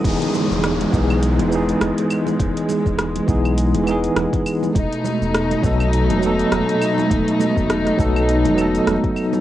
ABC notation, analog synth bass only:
X:1
M:4/4
L:1/16
Q:"Swing 16ths" 1/4=102
K:E
V:1 name="Analog synth bass" clef=bass
E,,, z2 E,,,2 z B,,,3 E,,,2 z E,,, z3 | E,,, z2 E,,,2 z B,,,3 E,,,2 z E,,, z3 | E,,, z2 E,,,2 z B,,,3 E,,,2 z E,,, z3 | E,,, z2 E,,,2 z B,,,3 E,,,2 z E,,, z3 |]